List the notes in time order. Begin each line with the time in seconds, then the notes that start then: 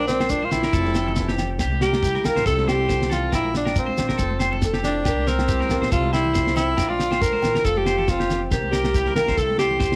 Already playing: A#1 A#2 F3 A#4
0.00 D5
0.08 C4, snare, high conga, shekere
0.20 C5, snare, high conga, low agogo
0.29 F3 D4, muted steel-string acoustic guitar stroke, kick, shekere
0.43 F4 C5, high conga
0.51 A#1 D4 E4, snare, low conga, low agogo, shekere
0.63 G1 A#4, snare
0.73 F1 F3 C4 A4, kick, shekere
0.86 snare, high conga
0.95 A4, snare, low agogo, shekere
1.07 A4, low conga
1.16 E3, kick, snare, shekere
1.28 G4, snare
1.38 snare, low conga, low agogo, shekere
1.59 C2 G4, muted steel-string acoustic guitar stroke, kick, snare, low agogo, shekere
1.73 high conga
1.81 G4 A#4, snare, high conga, shekere
1.93 snare, high conga, low agogo
2.03 G3 E4 G4, kick, shekere
2.15 A#4, snare, high conga
2.24 C2 A#3 A#4, snare, low conga, low agogo, shekere
2.36 A#1 C5, snare
2.46 C2 C3 F3 C4 E4 A4, kick, shekere
2.58 snare, high conga
2.68 G4 C5, snare, low agogo, shekere
2.89 D3 C5, kick, snare, shekere
3.02 snare
3.10 C3 F4 A4, snare, low conga, low agogo, shekere
3.32 A#1 A#2 F3 D4 E4 A#4, kick, snare, low agogo, shekere
3.45 high conga
3.54 D4, snare, high conga, shekere
3.65 A#4, snare, high conga, low agogo
3.76 C4 F4, muted steel-string acoustic guitar stroke, kick, shekere
3.87 C5, high conga
3.97 A#1 D4, snare, low conga, low agogo, shekere
4.09 G1 A#4, snare
4.18 F1 A4, kick, shekere
4.22 F3, muted steel-string acoustic guitar stroke
4.31 high conga
4.40 C5, snare, low agogo, shekere
4.52 A4, low conga
4.62 C4 A4, kick, snare, shekere
4.73 G4, snare
4.84 D4 E4, snare, low conga, low agogo, shekere
5.05 C2 G4 A#4, muted steel-string acoustic guitar stroke, kick, snare, low agogo, shekere
5.19 high conga
5.27 C4 A#4, snare, high conga, shekere
5.39 snare, high conga, low agogo
5.48 G3 E4 G4, kick, shekere
5.60 A#4, snare, high conga
5.69 C2 A#3, snare, low conga, low agogo, shekere
5.81 A#1 C5, snare
5.92 C2 C3 E4 F4 A4, kick, shekere
6.03 high conga
6.13 E4 C5, snare, low agogo, shekere
6.25 low conga
6.34 F3 C4 C5, kick, snare, shekere
6.47 snare
6.56 C4 E4 A4, snare, low conga, low agogo, shekere
6.77 A#1 A#2 D4 A#4, kick, snare, low agogo, shekere
6.89 F4 D5, high conga
6.99 snare, high conga, shekere
7.11 C5, snare, high conga, low agogo
7.22 D3 A#4, kick, shekere
7.32 C5, high conga
7.42 A#1 E3, snare, low conga, low agogo, shekere
7.54 G1 A#4, snare
7.65 F1 F3 F4 A4, kick, shekere
7.77 G4, high conga
7.86 C5, snare, low agogo, shekere
7.98 A4, low conga
8.08 C4 F4, kick, snare, shekere
8.20 G4, snare
8.30 C4, snare, low conga, low agogo, shekere
8.51 C2 C3 G4 A#4, kick, snare, low agogo, shekere
8.63 high conga
8.71 G4 A#4, snare, high conga, shekere
8.84 snare, high conga, low agogo
8.94 G3 E4 G4, kick, shekere
9.06 A#4, snare, high conga
9.15 C2 A#3 A#4, snare, low conga, low agogo, shekere
9.28 A#1 C5, snare
9.37 C2 C3 A4, kick, shekere
9.42 E4
9.50 high conga
9.58 G4 C5, snare, low agogo, shekere
9.71 low conga
9.80 C5, kick, snare, shekere
9.92 snare